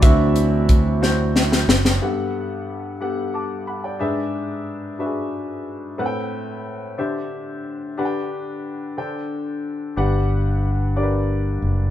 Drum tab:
HH |x-x-x-------|------------|------------|------------|
SD |------o-oooo|------------|------------|------------|
BD |o---o-------|------------|------------|------------|

HH |------------|------------|
SD |------------|------------|
BD |------------|------------|